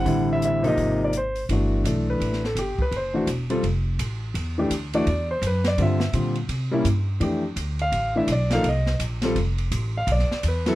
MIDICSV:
0, 0, Header, 1, 5, 480
1, 0, Start_track
1, 0, Key_signature, 1, "major"
1, 0, Tempo, 357995
1, 84, Time_signature, 4, 2, 24, 8
1, 14415, End_track
2, 0, Start_track
2, 0, Title_t, "Grand piano"
2, 0, Program_c, 0, 0
2, 0, Note_on_c, 0, 78, 91
2, 71, Note_on_c, 0, 50, 64
2, 79, Note_on_c, 0, 55, 60
2, 79, Note_on_c, 0, 60, 57
2, 89, Note_on_c, 0, 64, 72
2, 372, Note_off_c, 0, 78, 0
2, 438, Note_on_c, 0, 76, 89
2, 579, Note_off_c, 0, 76, 0
2, 606, Note_on_c, 0, 76, 94
2, 797, Note_off_c, 0, 50, 0
2, 801, Note_off_c, 0, 55, 0
2, 801, Note_off_c, 0, 60, 0
2, 806, Note_off_c, 0, 64, 0
2, 843, Note_on_c, 0, 48, 76
2, 843, Note_on_c, 0, 53, 68
2, 857, Note_on_c, 0, 58, 64
2, 865, Note_on_c, 0, 63, 82
2, 866, Note_off_c, 0, 76, 0
2, 903, Note_on_c, 0, 75, 89
2, 1331, Note_off_c, 0, 75, 0
2, 1399, Note_on_c, 0, 74, 73
2, 1476, Note_off_c, 0, 48, 0
2, 1476, Note_off_c, 0, 53, 0
2, 1483, Note_off_c, 0, 58, 0
2, 1487, Note_off_c, 0, 63, 0
2, 1540, Note_off_c, 0, 74, 0
2, 1575, Note_on_c, 0, 72, 77
2, 1913, Note_off_c, 0, 72, 0
2, 2018, Note_on_c, 0, 52, 53
2, 2027, Note_on_c, 0, 57, 53
2, 2039, Note_on_c, 0, 62, 47
2, 2039, Note_on_c, 0, 66, 54
2, 2471, Note_off_c, 0, 52, 0
2, 2471, Note_off_c, 0, 57, 0
2, 2474, Note_off_c, 0, 62, 0
2, 2482, Note_off_c, 0, 66, 0
2, 2491, Note_on_c, 0, 52, 52
2, 2491, Note_on_c, 0, 57, 46
2, 2494, Note_on_c, 0, 62, 43
2, 2501, Note_on_c, 0, 69, 52
2, 2814, Note_on_c, 0, 71, 72
2, 3206, Note_off_c, 0, 52, 0
2, 3206, Note_off_c, 0, 57, 0
2, 3207, Note_off_c, 0, 62, 0
2, 3211, Note_off_c, 0, 69, 0
2, 3245, Note_off_c, 0, 71, 0
2, 3297, Note_on_c, 0, 69, 66
2, 3454, Note_off_c, 0, 69, 0
2, 3468, Note_on_c, 0, 67, 72
2, 3746, Note_off_c, 0, 67, 0
2, 3779, Note_on_c, 0, 71, 77
2, 3934, Note_off_c, 0, 71, 0
2, 3975, Note_on_c, 0, 72, 69
2, 4208, Note_on_c, 0, 52, 56
2, 4208, Note_on_c, 0, 57, 56
2, 4225, Note_on_c, 0, 62, 53
2, 4231, Note_on_c, 0, 66, 69
2, 4375, Note_off_c, 0, 57, 0
2, 4376, Note_off_c, 0, 52, 0
2, 4384, Note_off_c, 0, 62, 0
2, 4387, Note_off_c, 0, 66, 0
2, 4396, Note_off_c, 0, 72, 0
2, 4691, Note_on_c, 0, 55, 69
2, 4696, Note_on_c, 0, 60, 60
2, 4697, Note_on_c, 0, 65, 67
2, 4709, Note_on_c, 0, 69, 70
2, 4857, Note_off_c, 0, 55, 0
2, 4859, Note_off_c, 0, 60, 0
2, 4860, Note_off_c, 0, 65, 0
2, 4866, Note_off_c, 0, 69, 0
2, 6139, Note_on_c, 0, 52, 69
2, 6153, Note_on_c, 0, 57, 62
2, 6156, Note_on_c, 0, 62, 61
2, 6156, Note_on_c, 0, 67, 68
2, 6301, Note_off_c, 0, 52, 0
2, 6308, Note_off_c, 0, 57, 0
2, 6309, Note_off_c, 0, 67, 0
2, 6310, Note_off_c, 0, 62, 0
2, 6627, Note_on_c, 0, 52, 75
2, 6631, Note_on_c, 0, 57, 64
2, 6635, Note_on_c, 0, 62, 65
2, 6637, Note_on_c, 0, 74, 92
2, 6641, Note_on_c, 0, 66, 75
2, 6785, Note_off_c, 0, 52, 0
2, 6787, Note_off_c, 0, 57, 0
2, 6789, Note_off_c, 0, 62, 0
2, 6792, Note_off_c, 0, 66, 0
2, 7075, Note_off_c, 0, 74, 0
2, 7118, Note_on_c, 0, 72, 77
2, 7283, Note_off_c, 0, 72, 0
2, 7331, Note_on_c, 0, 71, 73
2, 7598, Note_off_c, 0, 71, 0
2, 7609, Note_on_c, 0, 74, 85
2, 7755, Note_on_c, 0, 50, 59
2, 7761, Note_on_c, 0, 55, 54
2, 7769, Note_off_c, 0, 74, 0
2, 7772, Note_on_c, 0, 60, 57
2, 7780, Note_on_c, 0, 65, 63
2, 7809, Note_on_c, 0, 76, 79
2, 8027, Note_off_c, 0, 50, 0
2, 8030, Note_off_c, 0, 55, 0
2, 8036, Note_off_c, 0, 60, 0
2, 8040, Note_off_c, 0, 65, 0
2, 8222, Note_on_c, 0, 50, 44
2, 8228, Note_on_c, 0, 55, 47
2, 8229, Note_on_c, 0, 60, 43
2, 8232, Note_off_c, 0, 76, 0
2, 8239, Note_on_c, 0, 65, 55
2, 8501, Note_off_c, 0, 50, 0
2, 8504, Note_off_c, 0, 55, 0
2, 8505, Note_off_c, 0, 60, 0
2, 8510, Note_off_c, 0, 65, 0
2, 9002, Note_on_c, 0, 55, 77
2, 9012, Note_on_c, 0, 58, 66
2, 9023, Note_on_c, 0, 61, 65
2, 9027, Note_on_c, 0, 64, 82
2, 9172, Note_off_c, 0, 55, 0
2, 9177, Note_off_c, 0, 58, 0
2, 9183, Note_off_c, 0, 61, 0
2, 9184, Note_off_c, 0, 64, 0
2, 9656, Note_on_c, 0, 52, 60
2, 9665, Note_on_c, 0, 62, 55
2, 9669, Note_on_c, 0, 57, 51
2, 9684, Note_on_c, 0, 67, 66
2, 9938, Note_off_c, 0, 52, 0
2, 9942, Note_off_c, 0, 62, 0
2, 9945, Note_off_c, 0, 57, 0
2, 9952, Note_off_c, 0, 67, 0
2, 10480, Note_on_c, 0, 77, 98
2, 10917, Note_off_c, 0, 77, 0
2, 10936, Note_on_c, 0, 52, 62
2, 10941, Note_on_c, 0, 57, 58
2, 10954, Note_on_c, 0, 64, 70
2, 10955, Note_on_c, 0, 62, 61
2, 10960, Note_on_c, 0, 76, 73
2, 11099, Note_off_c, 0, 52, 0
2, 11102, Note_off_c, 0, 57, 0
2, 11108, Note_off_c, 0, 64, 0
2, 11109, Note_off_c, 0, 62, 0
2, 11124, Note_off_c, 0, 76, 0
2, 11156, Note_on_c, 0, 74, 82
2, 11422, Note_on_c, 0, 53, 60
2, 11430, Note_off_c, 0, 74, 0
2, 11435, Note_on_c, 0, 58, 62
2, 11435, Note_on_c, 0, 77, 107
2, 11444, Note_on_c, 0, 69, 75
2, 11445, Note_on_c, 0, 63, 62
2, 11582, Note_off_c, 0, 53, 0
2, 11589, Note_off_c, 0, 58, 0
2, 11594, Note_off_c, 0, 63, 0
2, 11594, Note_off_c, 0, 69, 0
2, 11602, Note_off_c, 0, 77, 0
2, 11646, Note_on_c, 0, 75, 80
2, 12071, Note_off_c, 0, 75, 0
2, 12379, Note_on_c, 0, 55, 71
2, 12381, Note_on_c, 0, 60, 63
2, 12391, Note_on_c, 0, 65, 62
2, 12398, Note_on_c, 0, 69, 73
2, 12541, Note_off_c, 0, 55, 0
2, 12542, Note_off_c, 0, 60, 0
2, 12547, Note_off_c, 0, 65, 0
2, 12551, Note_off_c, 0, 69, 0
2, 13374, Note_on_c, 0, 77, 90
2, 13532, Note_off_c, 0, 77, 0
2, 13565, Note_on_c, 0, 74, 79
2, 13991, Note_off_c, 0, 74, 0
2, 14055, Note_on_c, 0, 71, 65
2, 14301, Note_on_c, 0, 54, 74
2, 14317, Note_on_c, 0, 69, 82
2, 14319, Note_on_c, 0, 59, 63
2, 14325, Note_on_c, 0, 64, 69
2, 14415, Note_off_c, 0, 54, 0
2, 14415, Note_off_c, 0, 59, 0
2, 14415, Note_off_c, 0, 64, 0
2, 14415, Note_off_c, 0, 69, 0
2, 14415, Note_off_c, 0, 71, 0
2, 14415, End_track
3, 0, Start_track
3, 0, Title_t, "Upright bass"
3, 0, Program_c, 1, 32
3, 74, Note_on_c, 1, 33, 83
3, 990, Note_off_c, 1, 33, 0
3, 1031, Note_on_c, 1, 32, 83
3, 1948, Note_off_c, 1, 32, 0
3, 1997, Note_on_c, 1, 31, 76
3, 2460, Note_off_c, 1, 31, 0
3, 2468, Note_on_c, 1, 35, 73
3, 2940, Note_off_c, 1, 35, 0
3, 2949, Note_on_c, 1, 33, 75
3, 3415, Note_off_c, 1, 33, 0
3, 3423, Note_on_c, 1, 31, 82
3, 3711, Note_off_c, 1, 31, 0
3, 3906, Note_on_c, 1, 30, 82
3, 4374, Note_off_c, 1, 30, 0
3, 4382, Note_on_c, 1, 28, 75
3, 4856, Note_off_c, 1, 28, 0
3, 4867, Note_on_c, 1, 29, 84
3, 5338, Note_off_c, 1, 29, 0
3, 5346, Note_on_c, 1, 33, 85
3, 5815, Note_off_c, 1, 33, 0
3, 5823, Note_on_c, 1, 40, 85
3, 6296, Note_off_c, 1, 40, 0
3, 6305, Note_on_c, 1, 38, 71
3, 6778, Note_off_c, 1, 38, 0
3, 6791, Note_on_c, 1, 40, 91
3, 7254, Note_off_c, 1, 40, 0
3, 7262, Note_on_c, 1, 42, 92
3, 7736, Note_off_c, 1, 42, 0
3, 7746, Note_on_c, 1, 43, 84
3, 8213, Note_off_c, 1, 43, 0
3, 8221, Note_on_c, 1, 46, 87
3, 8687, Note_off_c, 1, 46, 0
3, 8695, Note_on_c, 1, 48, 79
3, 9169, Note_off_c, 1, 48, 0
3, 9177, Note_on_c, 1, 43, 87
3, 9647, Note_off_c, 1, 43, 0
3, 9656, Note_on_c, 1, 41, 75
3, 10129, Note_off_c, 1, 41, 0
3, 10137, Note_on_c, 1, 38, 84
3, 10613, Note_off_c, 1, 38, 0
3, 10619, Note_on_c, 1, 33, 81
3, 11085, Note_off_c, 1, 33, 0
3, 11093, Note_on_c, 1, 35, 90
3, 11567, Note_off_c, 1, 35, 0
3, 11575, Note_on_c, 1, 36, 87
3, 12052, Note_off_c, 1, 36, 0
3, 12059, Note_on_c, 1, 34, 76
3, 12535, Note_off_c, 1, 34, 0
3, 12543, Note_on_c, 1, 29, 87
3, 13017, Note_off_c, 1, 29, 0
3, 13025, Note_on_c, 1, 33, 85
3, 13492, Note_off_c, 1, 33, 0
3, 13500, Note_on_c, 1, 35, 94
3, 13789, Note_off_c, 1, 35, 0
3, 13989, Note_on_c, 1, 40, 78
3, 14415, Note_off_c, 1, 40, 0
3, 14415, End_track
4, 0, Start_track
4, 0, Title_t, "Muted upright bass strokes"
4, 3731, Note_on_c, 9, 29, 41
4, 3866, Note_off_c, 9, 29, 0
4, 13802, Note_on_c, 9, 29, 37
4, 13936, Note_off_c, 9, 29, 0
4, 14415, End_track
5, 0, Start_track
5, 0, Title_t, "Drums"
5, 75, Note_on_c, 9, 36, 35
5, 79, Note_on_c, 9, 46, 53
5, 209, Note_off_c, 9, 36, 0
5, 213, Note_off_c, 9, 46, 0
5, 563, Note_on_c, 9, 42, 58
5, 697, Note_off_c, 9, 42, 0
5, 858, Note_on_c, 9, 46, 42
5, 992, Note_off_c, 9, 46, 0
5, 1035, Note_on_c, 9, 36, 31
5, 1039, Note_on_c, 9, 46, 47
5, 1169, Note_off_c, 9, 36, 0
5, 1173, Note_off_c, 9, 46, 0
5, 1513, Note_on_c, 9, 42, 58
5, 1647, Note_off_c, 9, 42, 0
5, 1817, Note_on_c, 9, 46, 44
5, 1951, Note_off_c, 9, 46, 0
5, 1996, Note_on_c, 9, 36, 19
5, 2001, Note_on_c, 9, 51, 59
5, 2130, Note_off_c, 9, 36, 0
5, 2135, Note_off_c, 9, 51, 0
5, 2477, Note_on_c, 9, 36, 25
5, 2485, Note_on_c, 9, 44, 60
5, 2485, Note_on_c, 9, 51, 60
5, 2611, Note_off_c, 9, 36, 0
5, 2619, Note_off_c, 9, 44, 0
5, 2619, Note_off_c, 9, 51, 0
5, 2958, Note_on_c, 9, 36, 24
5, 2969, Note_on_c, 9, 51, 54
5, 3092, Note_off_c, 9, 36, 0
5, 3103, Note_off_c, 9, 51, 0
5, 3122, Note_on_c, 9, 38, 29
5, 3256, Note_off_c, 9, 38, 0
5, 3275, Note_on_c, 9, 38, 36
5, 3409, Note_off_c, 9, 38, 0
5, 3434, Note_on_c, 9, 36, 19
5, 3438, Note_on_c, 9, 44, 50
5, 3438, Note_on_c, 9, 51, 63
5, 3568, Note_off_c, 9, 36, 0
5, 3573, Note_off_c, 9, 44, 0
5, 3573, Note_off_c, 9, 51, 0
5, 3734, Note_on_c, 9, 36, 58
5, 3868, Note_off_c, 9, 36, 0
5, 3912, Note_on_c, 9, 36, 22
5, 3918, Note_on_c, 9, 51, 56
5, 4046, Note_off_c, 9, 36, 0
5, 4052, Note_off_c, 9, 51, 0
5, 4387, Note_on_c, 9, 44, 60
5, 4387, Note_on_c, 9, 51, 66
5, 4389, Note_on_c, 9, 36, 21
5, 4521, Note_off_c, 9, 44, 0
5, 4521, Note_off_c, 9, 51, 0
5, 4523, Note_off_c, 9, 36, 0
5, 4691, Note_on_c, 9, 51, 45
5, 4825, Note_off_c, 9, 51, 0
5, 4869, Note_on_c, 9, 36, 18
5, 4875, Note_on_c, 9, 51, 53
5, 5003, Note_off_c, 9, 36, 0
5, 5009, Note_off_c, 9, 51, 0
5, 5349, Note_on_c, 9, 36, 26
5, 5352, Note_on_c, 9, 44, 52
5, 5352, Note_on_c, 9, 51, 70
5, 5483, Note_off_c, 9, 36, 0
5, 5486, Note_off_c, 9, 44, 0
5, 5486, Note_off_c, 9, 51, 0
5, 5830, Note_on_c, 9, 36, 21
5, 5833, Note_on_c, 9, 51, 61
5, 5964, Note_off_c, 9, 36, 0
5, 5967, Note_off_c, 9, 51, 0
5, 6307, Note_on_c, 9, 36, 23
5, 6309, Note_on_c, 9, 44, 61
5, 6309, Note_on_c, 9, 51, 69
5, 6441, Note_off_c, 9, 36, 0
5, 6443, Note_off_c, 9, 44, 0
5, 6443, Note_off_c, 9, 51, 0
5, 6615, Note_on_c, 9, 51, 48
5, 6749, Note_off_c, 9, 51, 0
5, 6790, Note_on_c, 9, 36, 21
5, 6794, Note_on_c, 9, 51, 55
5, 6924, Note_off_c, 9, 36, 0
5, 6928, Note_off_c, 9, 51, 0
5, 7268, Note_on_c, 9, 36, 26
5, 7273, Note_on_c, 9, 44, 61
5, 7273, Note_on_c, 9, 51, 73
5, 7402, Note_off_c, 9, 36, 0
5, 7407, Note_off_c, 9, 44, 0
5, 7407, Note_off_c, 9, 51, 0
5, 7567, Note_on_c, 9, 38, 64
5, 7568, Note_on_c, 9, 51, 49
5, 7701, Note_off_c, 9, 38, 0
5, 7702, Note_off_c, 9, 51, 0
5, 7747, Note_on_c, 9, 36, 22
5, 7749, Note_on_c, 9, 51, 60
5, 7881, Note_off_c, 9, 36, 0
5, 7884, Note_off_c, 9, 51, 0
5, 8045, Note_on_c, 9, 38, 65
5, 8179, Note_off_c, 9, 38, 0
5, 8223, Note_on_c, 9, 36, 19
5, 8223, Note_on_c, 9, 44, 49
5, 8223, Note_on_c, 9, 51, 68
5, 8357, Note_off_c, 9, 36, 0
5, 8357, Note_off_c, 9, 44, 0
5, 8357, Note_off_c, 9, 51, 0
5, 8520, Note_on_c, 9, 51, 43
5, 8654, Note_off_c, 9, 51, 0
5, 8700, Note_on_c, 9, 51, 64
5, 8701, Note_on_c, 9, 36, 17
5, 8834, Note_off_c, 9, 51, 0
5, 8835, Note_off_c, 9, 36, 0
5, 9181, Note_on_c, 9, 36, 22
5, 9181, Note_on_c, 9, 44, 55
5, 9181, Note_on_c, 9, 51, 65
5, 9315, Note_off_c, 9, 36, 0
5, 9315, Note_off_c, 9, 44, 0
5, 9315, Note_off_c, 9, 51, 0
5, 9662, Note_on_c, 9, 36, 25
5, 9664, Note_on_c, 9, 51, 62
5, 9796, Note_off_c, 9, 36, 0
5, 9798, Note_off_c, 9, 51, 0
5, 10142, Note_on_c, 9, 36, 25
5, 10144, Note_on_c, 9, 44, 57
5, 10144, Note_on_c, 9, 51, 63
5, 10276, Note_off_c, 9, 36, 0
5, 10278, Note_off_c, 9, 44, 0
5, 10278, Note_off_c, 9, 51, 0
5, 10446, Note_on_c, 9, 51, 44
5, 10580, Note_off_c, 9, 51, 0
5, 10622, Note_on_c, 9, 36, 26
5, 10624, Note_on_c, 9, 51, 56
5, 10757, Note_off_c, 9, 36, 0
5, 10758, Note_off_c, 9, 51, 0
5, 11097, Note_on_c, 9, 44, 51
5, 11097, Note_on_c, 9, 51, 73
5, 11101, Note_on_c, 9, 36, 22
5, 11231, Note_off_c, 9, 44, 0
5, 11231, Note_off_c, 9, 51, 0
5, 11235, Note_off_c, 9, 36, 0
5, 11403, Note_on_c, 9, 38, 61
5, 11404, Note_on_c, 9, 51, 49
5, 11537, Note_off_c, 9, 38, 0
5, 11538, Note_off_c, 9, 51, 0
5, 11582, Note_on_c, 9, 36, 22
5, 11583, Note_on_c, 9, 51, 62
5, 11716, Note_off_c, 9, 36, 0
5, 11717, Note_off_c, 9, 51, 0
5, 11884, Note_on_c, 9, 38, 43
5, 12018, Note_off_c, 9, 38, 0
5, 12062, Note_on_c, 9, 44, 62
5, 12062, Note_on_c, 9, 51, 67
5, 12063, Note_on_c, 9, 36, 27
5, 12196, Note_off_c, 9, 44, 0
5, 12196, Note_off_c, 9, 51, 0
5, 12197, Note_off_c, 9, 36, 0
5, 12358, Note_on_c, 9, 38, 47
5, 12359, Note_on_c, 9, 51, 49
5, 12492, Note_off_c, 9, 38, 0
5, 12493, Note_off_c, 9, 51, 0
5, 12544, Note_on_c, 9, 36, 22
5, 12547, Note_on_c, 9, 51, 60
5, 12678, Note_off_c, 9, 36, 0
5, 12681, Note_off_c, 9, 51, 0
5, 12847, Note_on_c, 9, 51, 46
5, 12981, Note_off_c, 9, 51, 0
5, 13026, Note_on_c, 9, 36, 21
5, 13026, Note_on_c, 9, 44, 62
5, 13026, Note_on_c, 9, 51, 72
5, 13160, Note_off_c, 9, 36, 0
5, 13160, Note_off_c, 9, 44, 0
5, 13160, Note_off_c, 9, 51, 0
5, 13507, Note_on_c, 9, 36, 21
5, 13508, Note_on_c, 9, 51, 72
5, 13641, Note_off_c, 9, 36, 0
5, 13642, Note_off_c, 9, 51, 0
5, 13663, Note_on_c, 9, 38, 31
5, 13797, Note_off_c, 9, 38, 0
5, 13829, Note_on_c, 9, 38, 44
5, 13963, Note_off_c, 9, 38, 0
5, 13985, Note_on_c, 9, 44, 68
5, 13985, Note_on_c, 9, 51, 74
5, 13988, Note_on_c, 9, 36, 21
5, 14119, Note_off_c, 9, 44, 0
5, 14119, Note_off_c, 9, 51, 0
5, 14122, Note_off_c, 9, 36, 0
5, 14292, Note_on_c, 9, 38, 45
5, 14294, Note_on_c, 9, 51, 46
5, 14415, Note_off_c, 9, 38, 0
5, 14415, Note_off_c, 9, 51, 0
5, 14415, End_track
0, 0, End_of_file